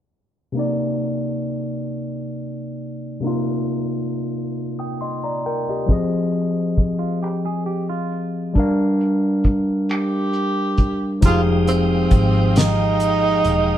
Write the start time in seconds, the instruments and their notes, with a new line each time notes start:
0.52 tine electric piano C3 A#3
0.57 tine electric piano D#4 D5
3.20 tine electric piano C3 A#3 D#4
3.27 tine electric piano F4
4.79 tine electric piano G5 D#6
5.01 tine electric piano D#5 C6
5.24 tine electric piano D5 A#5
5.46 tine electric piano A#4 G5
5.69 tine electric piano G4 D#5
5.86 tine electric piano F3 C4 G#4, kick, closed hi-hat
5.92 tine electric piano D#5
6.34 closed hi-hat
6.76 kick, closed hi-hat
6.99 clean electric guitar F4
7.22 clean electric guitar G4, finger snap, closed hi-hat
7.46 clean electric guitar G#4
7.66 clean electric guitar G4, closed hi-hat
7.89 clean electric guitar F4
8.11 closed hi-hat
8.54 tine electric piano G3 D4, kick, closed hi-hat
8.58 tine electric piano A#4 F5
9.01 closed hi-hat
9.44 kick, closed hi-hat
9.89 tenor saxophone G4, finger snap, closed hi-hat
10.33 closed hi-hat
10.78 kick, closed hi-hat
11.21 fingered electric bass F1, tine electric piano F3 D#4 G4, tonewheel organ G#3 F5 G5 D#6, kick, closed hi-hat
11.25 tenor saxophone F4, tine electric piano G#4
11.67 tenor saxophone C4, closed hi-hat
12.11 fingered electric bass G#1, kick, closed hi-hat
12.56 tenor saxophone D#4, snare, closed hi-hat
13.00 closed hi-hat
13.45 fingered electric bass E1, closed hi-hat